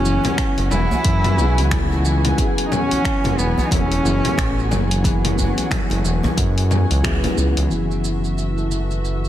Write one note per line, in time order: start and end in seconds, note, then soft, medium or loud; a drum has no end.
0.00 0.19 F#1 medium
0.00 1.36 C#3 medium
0.00 7.73 E3 medium
0.00 0.70 F#3 medium
0.00 1.37 F#3 medium
0.00 1.91 A3 medium
0.00 1.38 B3 medium
0.00 0.73 C#4 loud
0.00 1.35 E4 medium
0.00 1.71 E4 loud
0.00 7.67 F#4 medium
0.00 1.40 G#4 loud
0.00 7.67 F#5 medium
0.00 7.71 G#5 medium
0.05 1.04 E3 medium
0.05 shaker medium
0.24 open hi-hat soft
0.24 djembe tone medium
0.24 low conga medium
0.24 shaker soft
0.38 finger snap medium
0.38 kick loud
0.38 open hi-hat medium
0.38 shaker soft
0.58 0.69 F#1 loud
0.58 open hi-hat soft
0.58 djembe slap soft
0.58 shaker soft
0.71 0.87 E1 medium
0.71 2.70 F#3 medium
0.71 2.04 E4 loud
0.71 low conga medium
0.71 shaker medium
0.91 djembe bass medium
0.91 shaker soft
1.05 1.39 F#2 loud
1.05 2.04 E3 medium
1.05 kick loud
1.05 open hi-hat medium
1.05 shaker soft
1.24 open hi-hat soft
1.24 low conga medium
1.24 shaker soft
1.36 1.59 B1 loud
1.36 2.34 C#3 medium
1.36 2.34 F#3 medium
1.36 2.35 B3 medium
1.36 2.35 E4 medium
1.36 2.36 G#4 loud
1.36 shaker medium
1.58 2.34 C#2 loud
1.58 open hi-hat soft
1.58 shaker soft
1.71 3.71 E4 medium
1.71 finger snap loud
1.71 kick loud
1.71 open hi-hat medium
1.71 low conga medium
1.71 shaker soft
1.91 3.91 A3 medium
1.91 djembe tone medium
1.91 shaker soft
2.05 3.03 E3 medium
2.05 shaker medium
2.25 open hi-hat soft
2.25 low conga medium
2.25 shaker soft
2.36 4.00 C#3 loud
2.36 4.01 F#3 medium
2.36 4.01 B3 medium
2.36 4.02 E4 medium
2.36 kick medium
2.36 open hi-hat medium
2.36 shaker soft
2.40 4.02 G#4 loud
2.58 open hi-hat soft
2.58 shaker soft
2.66 2.73 D#4 medium
2.71 4.70 F#3 medium
2.71 3.40 C#4 loud
2.71 low conga medium
2.71 shaker medium
2.91 open hi-hat soft
2.91 djembe tone medium
2.91 shaker soft
3.05 4.04 E3 medium
3.05 finger snap loud
3.05 kick loud
3.05 open hi-hat medium
3.05 shaker soft
3.24 3.35 F#1 loud
3.24 open hi-hat soft
3.24 djembe slap medium
3.24 low conga medium
3.24 shaker soft
3.38 3.54 E1 medium
3.38 3.67 B3 loud
3.38 shaker medium
3.58 djembe bass medium
3.58 shaker soft
3.66 3.74 D#4 medium
3.71 4.00 E1 medium
3.71 4.73 C#4 loud
3.71 5.70 E4 medium
3.71 kick loud
3.71 open hi-hat medium
3.71 low conga medium
3.71 shaker soft
3.91 5.90 A3 medium
3.91 open hi-hat soft
3.91 shaker soft
4.02 4.21 F#1 loud
4.02 5.00 C#3 medium
4.02 5.03 E3 medium
4.02 5.01 F#3 medium
4.02 5.01 B3 medium
4.02 5.02 E4 medium
4.02 5.02 G#4 loud
4.02 shaker medium
4.25 open hi-hat soft
4.25 djembe tone medium
4.25 low conga medium
4.25 shaker soft
4.38 4.72 A1 medium
4.38 finger snap loud
4.38 kick loud
4.38 open hi-hat medium
4.38 shaker soft
4.59 shaker soft
4.71 5.52 F#1 medium
4.71 6.70 F#3 medium
4.71 7.04 F#3 loud
4.71 djembe tone medium
4.71 low conga medium
4.71 shaker medium
4.91 open hi-hat soft
4.91 djembe slap soft
4.91 shaker soft
5.02 6.67 C#3 medium
5.02 6.03 E3 medium
5.02 6.67 F#3 medium
5.02 6.68 B3 medium
5.02 6.68 E4 medium
5.02 kick loud
5.02 open hi-hat medium
5.02 shaker soft
5.06 6.69 G#4 loud
5.25 open hi-hat soft
5.25 low conga medium
5.25 shaker soft
5.38 djembe bass medium
5.38 shaker medium
5.57 open hi-hat soft
5.57 djembe tone medium
5.57 shaker soft
5.71 8.32 E4 loud
5.71 finger snap loud
5.71 kick loud
5.71 open hi-hat medium
5.71 low conga medium
5.71 shaker soft
5.90 6.02 F#1 loud
5.90 8.57 A3 medium
5.90 open hi-hat soft
5.90 djembe slap medium
5.90 djembe tone soft
5.90 shaker soft
6.04 6.20 E1 loud
6.04 7.03 E3 medium
6.04 shaker medium
6.23 djembe bass medium
6.23 low conga medium
6.23 shaker soft
6.37 6.85 F#2 loud
6.37 kick loud
6.37 open hi-hat medium
6.37 shaker soft
6.58 open hi-hat soft
6.58 shaker soft
6.71 7.76 F#3 medium
6.71 low conga medium
6.71 shaker medium
6.91 7.02 C#2 medium
6.91 open hi-hat soft
6.91 shaker soft
7.03 7.20 C#2 loud
7.03 7.67 C#3 loud
7.03 7.70 E3 loud
7.03 7.67 F#3 loud
7.03 7.68 B3 loud
7.03 7.68 E4 medium
7.03 7.68 G#4 loud
7.03 finger snap loud
7.03 kick loud
7.03 open hi-hat medium
7.24 open hi-hat soft
7.24 djembe tone medium
7.24 low conga medium
7.24 djembe bass medium
7.24 shaker soft
7.37 7.54 C#2 medium
7.37 shaker medium
7.57 7.68 C#2 medium
7.57 open hi-hat soft
7.57 djembe slap soft
7.57 djembe tone medium
7.57 shaker soft
7.69 9.29 F#1 medium
7.69 9.29 C#3 medium
7.69 8.70 E3 medium
7.69 9.29 F#3 medium
7.69 9.29 B3 medium
7.69 9.29 E4 medium
7.69 9.29 F#4 medium
7.69 9.29 E5 medium
7.69 shaker soft
7.73 9.29 G#4 medium
7.91 shaker soft
8.05 shaker medium
8.24 shaker soft
8.38 9.29 E4 medium
8.38 shaker soft
8.57 9.29 A3 medium
8.57 shaker soft
8.71 9.29 E3 medium
8.71 shaker medium
8.91 shaker soft
9.05 shaker soft
9.25 shaker soft